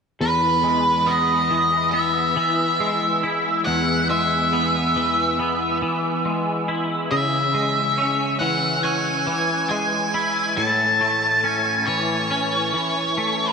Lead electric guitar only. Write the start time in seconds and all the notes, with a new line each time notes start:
0.21 B4
1.07 D#5
1.91 E5
3.65 F#5
4.10 E5
7.11 E5
8.39 F#5
8.83 G#5
9.70 G#5
10.57 A5
11.45 G#5
11.87 C#5